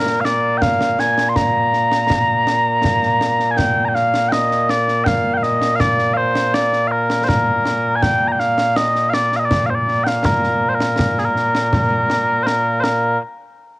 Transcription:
Already playing: A#2 A#3 A#4
0.06 snare
0.21 F5
0.25 D5, snare
0.58 G5
0.62 F5, concert bass drum, snare
0.81 snare
0.99 G#5, snare
1.18 snare
1.29 C6
1.36 A#5, concert bass drum, snare
1.73 snare
1.92 snare
2.10 concert bass drum, snare
2.47 snare
2.84 concert bass drum, snare
3.03 snare
3.21 snare
3.40 snare
3.51 G#5
3.57 G5, concert bass drum, snare
3.85 G5 A#5
3.95 F5, snare
4.14 snare
4.29 D#5 G5, snare
4.51 snare
4.69 D5, snare
4.88 snare
5.04 F5 G5, concert bass drum, snare
5.34 F5 G5
5.43 D#5, snare
5.62 snare
5.76 F5
5.80 D5, concert bass drum, snare
5.99 snare
6.14 C5 F5
6.35 snare
6.54 D5, snare
6.73 snare
6.87 F5
6.91 A#4
7.10 snare
7.24 C5
7.29 A#4, concert bass drum, snare
7.66 snare
7.96 G#5
8.02 G5, concert bass drum, snare
8.28 A#5
8.32 G5
8.40 F5, snare
8.58 snare
8.76 D#5, snare
8.95 snare
9.10 D5 F5, snare
9.32 F5, snare
9.40 D#5
9.45 D5
9.51 concert bass drum, snare
9.66 C5 F5
9.75 D5
9.88 snare
10.04 F5 G5, snare
10.25 A#4, concert bass drum, snare
10.44 snare
10.69 C5
10.75 A#4
10.81 snare
10.99 concert bass drum, snare
11.18 G#4, snare
11.25 A#4
11.36 snare
11.55 snare
11.73 concert bass drum, snare
12.10 snare
12.43 A#4 C5, snare
12.80 A#4 C5, snare

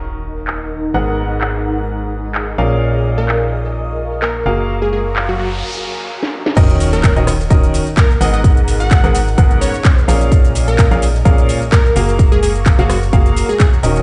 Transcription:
Already playing: D#1 D#3 C#4 D#4 F#4 A#4 D#5 F#5, sub drop
0.47 clap
0.94 G#1 G#2 B3 G#4 A#4 F#5
1.41 D#5, clap
2.35 clap
2.58 A#1 A#2 C#4 G#4 A#4 F5
2.87 F5
3.18 A#4
3.27 A#5 C#6, clap
4.22 A#4, clap
4.46 F#1 A#3 F#4 G#4 F5
4.69 noise sweep
4.82 G#4
4.93 G#4
5.16 clap
5.29 F#4
5.39 F#4
6.23 snare
6.46 snare
6.57 D#1 D#3 C#4 D#4 F#4 A#4 D#5, kick, closed hi-hat, crash, sub drop, shaker
6.70 closed hi-hat, shaker
6.80 open hi-hat, shaker
6.93 A#4, closed hi-hat, shaker
7.01 A#4, kick, clap, closed hi-hat, shaker
7.16 D#1 D#3 C#4 F#4 A#4 D#5, closed hi-hat, shaker
7.27 cross-stick, open hi-hat, shaker
7.41 F#5, shaker
7.50 D#1 D#3 C#4 F#4 A#4 D#5, kick, closed hi-hat, shaker
7.63 closed hi-hat, shaker
7.74 open hi-hat, shaker
7.87 closed hi-hat, shaker
7.97 A#4, kick, clap, closed hi-hat, shaker
8.11 shaker
8.21 G#1 G#2 B3 G#4 A#4 D#5 F#5, open hi-hat, shaker
8.34 D#5, closed hi-hat, shaker
8.44 G#4, kick, closed hi-hat, shaker
8.57 closed hi-hat, shaker
8.68 open hi-hat, shaker
8.80 F#5, closed hi-hat, shaker
8.91 D#5, kick, clap, closed hi-hat, shaker
9.04 G#1 G#2 B3 G#4 A#4 F#5, closed hi-hat, shaker
9.15 open hi-hat, shaker
9.28 shaker
9.38 G#1 G#2 B3 G#4 A#4 F#5, kick, closed hi-hat, shaker
9.51 closed hi-hat, shaker
9.61 C#5, open hi-hat, shaker
9.74 closed hi-hat, shaker
9.85 kick, clap, closed hi-hat, shaker
9.98 shaker
10.08 A#1 A#2 C#4 G#4 A#4 F5, open hi-hat, shaker
10.21 closed hi-hat, shaker
10.32 kick, closed hi-hat, shaker
10.41 F5, closed hi-hat, shaker
10.55 open hi-hat, shaker
10.68 A#4, closed hi-hat, shaker
10.79 A#5, kick, clap, closed hi-hat, shaker
10.89 A#1 A#2 C#4 G#4 A#4 F5 C#6, closed hi-hat, shaker
11.02 open hi-hat, shaker
11.16 shaker
11.25 A#1 A#2 C#4 G#4 A#4 F5, kick, closed hi-hat, shaker
11.38 closed hi-hat, shaker
11.49 open hi-hat, shaker
11.62 closed hi-hat, shaker
11.72 A#4, kick, clap, closed hi-hat, shaker
11.86 shaker
11.96 F#1 A#3 F#4 G#4 F5, open hi-hat, shaker
12.09 closed hi-hat, shaker
12.19 kick, closed hi-hat, shaker
12.25 C#5
12.32 G#4, closed hi-hat, shaker
12.43 G#4, open hi-hat, shaker
12.56 closed hi-hat, shaker
12.66 kick, clap, closed hi-hat, shaker
12.75 F#1 A#3 F#4 G#4 F5 G#5, closed hi-hat
12.80 shaker
12.89 F#4, cross-stick, open hi-hat, shaker
13.03 shaker
13.13 F#1 A#3 F#4 G#4 F5, kick, closed hi-hat, shaker
13.26 closed hi-hat, shaker
13.36 open hi-hat, shaker
13.49 G#4, closed hi-hat, shaker
13.60 G#4, kick, clap, closed hi-hat, shaker
13.73 shaker
13.83 D#1 D#3 C#4 F#4 A#4 D#5, open hi-hat, shaker
13.96 closed hi-hat, shaker

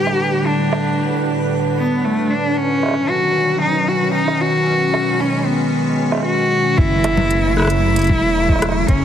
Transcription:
Already playing: A2 D3 G3 D4 G4 B4
0.07 high bongo
0.46 D4
0.73 high bongo
1.78 B3
2.04 A3
2.30 D4
2.57 B2 D#3 F#3 C#4
2.83 high bongo
2.86 high bongo
2.88 high bongo
2.91 high bongo
2.94 high bongo
3.09 F#4
3.62 D#4
3.88 F#4
4.14 D#4
4.28 high bongo
4.41 F#4
4.67 G#3
4.94 high bongo
5.20 C#4
5.46 B3
6.12 high bongo
6.15 high bongo
6.17 high bongo
6.20 high bongo
6.23 F#4, high bongo
6.78 F#1 C#3 F#3 A3 E4, kick
7.04 closed hi-hat, high bongo
7.17 low conga
7.31 closed hi-hat
7.57 E4, cross-stick
7.59 cross-stick
7.62 cross-stick
7.65 cross-stick
7.67 cross-stick, closed hi-hat
7.96 closed hi-hat
7.99 closed hi-hat
8.02 closed hi-hat
8.04 closed hi-hat
8.07 E1, kick, closed hi-hat, low conga
8.49 kick, high bongo
8.52 high bongo
8.56 high bongo
8.59 cross-stick, closed hi-hat, high bongo
8.62 high bongo
8.65 high bongo
8.69 high bongo
8.72 high bongo
8.88 F#1 C#4 F#4, kick, closed hi-hat

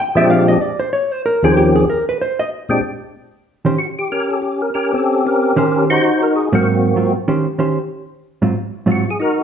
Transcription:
0.00 G5
0.15 A#2 F3 G#3 C4 D4 G4 E5
0.30 F5
0.48 D#5
0.62 D5
0.80 C5
0.93 C#5
1.12 C5
1.26 A#4
1.42 D#2 D#3 F3 C4 C#4 G4 G#4
1.57 G4
1.76 G#4
1.90 A#4
2.09 B4
2.21 C5
2.39 D#5
2.69 A#2 G#3 C4 D4 G4
3.65 D#3 C#4 G4 C5
3.78 F#4
3.99 G4
4.12 C#4 G4 A#4
4.31 A4
4.42 G4
4.62 A#4
4.74 C#4 G4 A#4
4.94 C4 C#4 A4
5.26 C#4 G4 A#4
5.56 D#3 C#4 G4 C5
5.90 D#4 F#4 C5
6.23 A#4
6.35 G#4
6.53 G#2 F#3 A#3 C4 F#4
6.96 G#2 F#3 C4 F4
7.28 D#3 C#4 G4 C5
7.58 D#3 C#4 G4 C5
8.42 G#2 F#3 C4 F4
8.86 G#2 F#3 C4 F4
8.92 F#4
9.11 G#4
9.20 D#4 F#4 A#4

